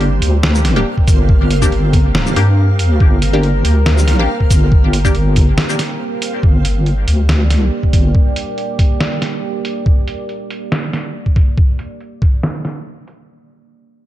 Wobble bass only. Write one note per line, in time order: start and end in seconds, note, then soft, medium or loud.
0.00 0.20 G1 loud
0.22 0.85 D2 loud
1.08 1.70 G1 loud
1.72 2.34 G1 medium
2.36 2.99 G2 loud
3.00 3.63 G1 medium
3.65 4.27 D2 loud
4.50 5.13 G1 medium
5.15 5.58 G1 loud
6.43 7.06 G1 medium
7.08 7.52 D2 loud
7.52 7.70 C#2 loud
7.93 8.13 G1 medium